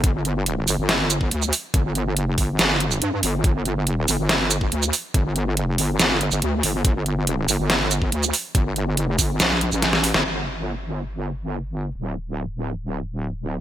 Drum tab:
HH |x-x-x-o-x-x-x-o-|x-x-x-o-x-x-x-o-|x-x-x-o-x-x-x-o-|x-x-x-o-x-x-x-o-|
SH |------x---x--xx-|--------x--x----|------x---x--xx-|--------x--x----|
SD |--------o-------|--------o-------|--------o-------|--------o-------|
BD |o----------o----|o-----o---------|o----------o----|o---------------|

HH |x-x-x-o-x-x-x-o-|x-x-x-o-x-x-x-o-|----------------|----------------|
SH |------x---x--xx-|------x-x--x----|----------------|----------------|
SD |--------o-------|--------o---oo-o|----------------|----------------|
BD |o----------o----|o-----o---------|----------------|----------------|